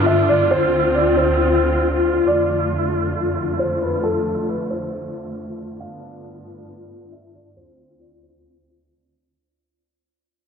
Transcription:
Already playing: string section G2 D3 A3 B3 D4 F4
0.06 felt piano E5
0.29 felt piano D5
0.51 string section D2 C4, felt piano C5
0.95 felt piano D5
1.17 felt piano C5
2.27 string section F2 D3 A3, felt piano D5
3.59 felt piano C5
3.82 felt piano B4
4.04 felt piano A4
4.48 felt piano B4
4.70 felt piano C5
5.80 string section G2 B3 D4 F4, felt piano F5
7.12 felt piano E5
7.35 felt piano D5
7.57 string section D2 C4 F4, felt piano C5
8.00 felt piano D5
8.23 felt piano C5

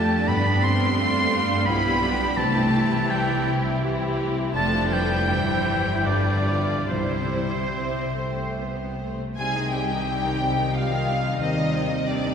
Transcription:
Already playing: double bass section F2, harp F2 F4 A4 D5 F5, cello section A3, viola section A3 D4, violin section G4 A5, oboe A5
0.05 harp A3
0.28 double bass section G2, timpani G2, harp G2, viola section B3, cello section B3, oboe B5, violin section B5
0.52 harp B3
0.62 cello section C4, violin section C6, oboe C6
0.75 harp F4
0.97 viola section A3 D4, violin section F4, harp D5
1.20 harp B4
1.44 harp F5
1.65 double bass section B1, viola section G3 E4, cello section B3, violin section G4 B5, harp B4, oboe B5
1.90 harp F4
2.03 viola section D4
2.14 harp B3
2.36 double bass section C2, harp C3, timpani C3, viola section E3 C4, cello section A3, violin section G4 A5, oboe A5
2.60 harp C4
2.74 viola section E4
2.84 harp E4
3.09 cello section G3, violin section G4 G5, harp C5, oboe G5
3.34 harp E4
3.58 harp E5
3.83 viola section E3 G4, violin section E4, harp C5
4.08 harp E4
4.32 harp C4
4.55 double bass section F1, harp F2, viola section F3 D4, cello section A3, violin section A4 A5, oboe A5
4.80 harp A3
4.92 cello section G3, violin section B4 G5, oboe G5
5.04 harp D4 D5
5.29 double bass section G1, harp G2, viola section E3 E4, violin section C5
5.54 harp C4
5.80 harp G4 E5
6.06 harp G2, cello section D3, viola section G3 F4, violin section B4 D5, oboe D5
6.34 harp B3
6.61 harp G4 F5
6.89 double bass section C2, harp C3, cello section C3, timpani C3, viola section G3 E4, oboe C5, violin section C5
7.18 harp C4
7.48 harp G4
7.74 viola section C4, harp E5
8.03 harp C5
8.18 viola section A3
8.31 harp G5
8.59 viola section B3, harp C5
8.87 harp G4
9.02 viola section A3
9.14 harp C4
9.38 double bass section C2, cello section C2, harp C3, french horn section G3 D#4, viola section G3 C4, violin section G#4 G#5
9.55 viola section D#3 D#4
9.61 harp C4
9.73 viola section G3 C4, violin section G4 G5
9.84 harp D#5
9.90 viola section D#3 D#4
10.07 viola section G3 C4, harp C5
10.25 viola section D#3 D#4
10.29 harp G5
10.41 viola section G3 C4
10.52 harp C5
10.58 viola section D#3 D#4
10.74 viola section G3 C4, violin section F4 F5, harp D#5
10.91 viola section D#3 D#4
10.96 harp G4
11.07 viola section G3 C4
11.18 harp C4
11.24 viola section D#3 D#4
11.40 double bass section D#2, cello section D#2, harp D#3, viola section D#3 C4, french horn section C4, violin section D#4 D#5
11.57 viola section G3 D#4
11.62 harp C4
11.74 viola section D#3 C4
11.85 harp C5
11.91 viola section G3 D#4
12.07 viola section D#3 C4, violin section D4 D5, harp G4
12.24 viola section G3 D#4
12.29 harp G5

